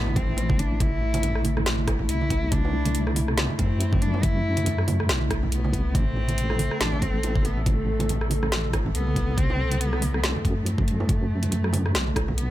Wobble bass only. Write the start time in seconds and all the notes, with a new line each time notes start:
Already playing: A1
2.09 C2
3.59 F#2
5.09 B1
5.73 C2
5.95 A1
6.81 A1
8.95 C2
10.45 F#2
11.95 B1